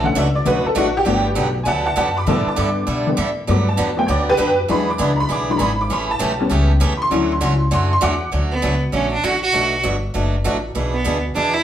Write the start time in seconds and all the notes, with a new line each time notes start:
Already playing: B1
0.03 D3 A3 C#4 F#5
0.15 C#2 B2 F#3 A3 D4 F#4 E5
0.35 D5
0.45 B1 B2 D3 F#3 A3 C#4 D4 F#4 B4
0.65 A4, muted upright bass stroke
0.75 A1 B2 F#3 A3 D4 F#4
0.97 G4
1.05 G1 D3 F#3 A3 B3 D4 F#4 G4
1.35 B1 D3 F#3 B3 D4 G4
1.63 D2 D3 F#3 B3 D4 G4 F#5 G#5
1.68 A5
1.86 F#5 A5
1.96 F#2 D3 F#3 B3 D4 G4 F#5 A5
2.17 B5 D6
2.27 A2 D3 G3 B3 D4 E4 A4 A5 D6
2.46 A5 D6, muted upright bass stroke
2.56 G2 D3 G3 D4 E4 A4 D6
2.87 B2 D3 G3 D4 E4 A4
3.07 D3 G3 B3
3.17 A2 D3 G3 D4 E4 A4
3.47 G2 D3 F#3 A3 B3 D4 G4 D6
3.69 A5
3.77 E2 D3 F#3 B3 D4 G4
3.97 F#3 A3 B3 G5
4.06 D2 D3 F#3 B3 D4 G4 C#5
4.10 D5
4.29 G4 B4
4.37 F#2 D3 F#3 B3 D4 G4
4.68 E2 E3 F#3 G#3 B3 D4 G#4 B5
4.90 D6
4.98 C#2 E3 B3 D4 G#4 B5
5.16 A#5
5.20 B5
5.29 B1 E3 B3 D4 G#4 D6
5.49 F#3 G#3 D4 B5
5.57 G#1 E3 B3 D4 G#4 A#5
5.61 B5
5.81 D6
5.90 A1 C#3 E3 A3 C#4 G4 B5
6.11 A5
6.19 B1 C#3 E3 A3 C#4 G4
6.39 G3 B3 C#4
6.50 C#2 C#3 E3 A3 C#4 G4
6.80 E2 C#3 E3 A3 C#4 G4
6.97 B5
7.02 C6
7.10 D2 D3 F#3 A3 C#4 E4 F#4
7.32 C6
7.41 C#2 D3 F#3 A3 C#4 F#4 C6
7.71 F#2 D3 F#3 A3 C#4 F#4 C6
7.93 C6
8.01 E2 D3 F#3 A3 C#4 F#4 F#5 D6
8.32 D2 D3 F#3 A3 C#4 F#4
8.52 B3
8.62 C#2 D3 F#3 A3 C#4 F#4
8.92 A#1 D3 F#3 A3 C#4 F#4
9.13 D4
9.23 A1 D3 F#3 A3 C#4 F#4
9.43 F#4
9.53 B1 B2 F#3 A3 D4 F#4
9.83 G1 B2 F#3 A3 D4 F#4
10.14 F#1 B2 F#3 A3 D4 F#4
10.44 A1 B2 F#3 A3 D4 F#4
10.75 B1 B2 E3 B3 D4 G#4
10.93 B3
11.04 D2 B2 E3 B3 D4 G#4
11.35 E2 B2 E3 B3 D4 G#4
11.54 E4